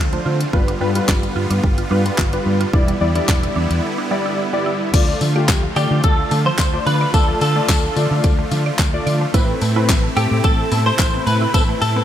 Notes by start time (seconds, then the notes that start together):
Already playing: D3 A3 C4 F4
0.00 D2
0.13 F3 A3 D4 C5, closed hi-hat
0.26 D3 F4
0.41 closed hi-hat
0.53 G1 G3 B3 F4 B4, kick
0.68 D4, closed hi-hat
0.81 G2 G3 F4 B4
0.95 G3 F4 B4, closed hi-hat
1.08 G1 D4, kick, snare, clap
1.23 G3, closed hi-hat
1.36 G2 F4
1.50 G2 D4, closed hi-hat
1.63 G1 G3, kick
1.78 F4, closed hi-hat
1.91 G2 G3 D4 F4 B4
2.06 G3, closed hi-hat
2.18 G1 F4, kick, snare, clap
2.33 G3 D4 F4 B4, closed hi-hat
2.46 G2
2.61 F4, closed hi-hat
2.73 E1 D3 G3 B3 D4 E4 D5, kick
2.88 G3, closed hi-hat
3.01 E2 G3 E4 D5
3.15 G3 D4 E4 D5, closed hi-hat
3.28 E1 G3, kick, snare, clap
3.43 E4, closed hi-hat
3.56 E2 D4
3.71 E2, closed hi-hat
3.98 D4
4.11 G3 E4 D5
4.26 E4
4.53 G3 E4 D5
4.66 E4
4.93 D2 A3 F4 D5, kick, closed hi-hat, crash, tambourine
5.21 D3 F3, open hi-hat, tambourine
5.36 A3 F4 G4 D5
5.48 D2, kick, snare, clap, closed hi-hat, tambourine
5.63 F3
5.76 D3 A3 F4 G4 D5, open hi-hat, tambourine
5.91 D3
6.04 D2 A4, kick, closed hi-hat
6.31 D3 A3, open hi-hat, tambourine
6.46 F3 C5
6.58 D2 D5, kick, snare, clap, closed hi-hat, tambourine
6.73 A3 F4 D5
6.86 D3 F3 B4, open hi-hat
7.01 D5
7.14 D2 A3 F4 A4 D5, kick, closed hi-hat, tambourine
7.28 F3
7.41 D3 A4, open hi-hat, tambourine
7.56 A3 F4 D5
7.69 D2 F3, kick, snare, clap, closed hi-hat, tambourine
7.96 D3 A3 F4 D5, open hi-hat, tambourine
8.11 D3
8.24 D2 D5, kick, closed hi-hat, tambourine
8.39 A3
8.51 D3 F3, open hi-hat, tambourine
8.66 D5
8.79 D2 A3, kick, snare, clap, closed hi-hat, tambourine
8.93 A3 F4 D5
9.07 D3 D5, open hi-hat, tambourine
9.21 A3
9.34 A1 C3 A3 C4 E4 B4, kick, closed hi-hat, tambourine
9.62 A2 A3, open hi-hat, tambourine
9.76 A3 C4 E4 B4
9.89 A1, kick, snare, clap, closed hi-hat, tambourine
10.04 A3
10.16 A2 A3 C4 E4 G4 A4, open hi-hat, tambourine
10.31 A2
10.44 A1 A4, kick, closed hi-hat, tambourine
10.72 A2 B3, open hi-hat, tambourine
10.86 A3 C5
10.99 A1 E4, kick, snare, clap, closed hi-hat, tambourine
11.14 A3 B3 C4 B4
11.27 A2 A3 B4, open hi-hat, tambourine
11.41 E4
11.54 A1 A3 B3 C4 A4 B4, kick, closed hi-hat, tambourine
11.69 A3
11.82 A2 A4, open hi-hat, tambourine
11.96 A3 B3 C4 B4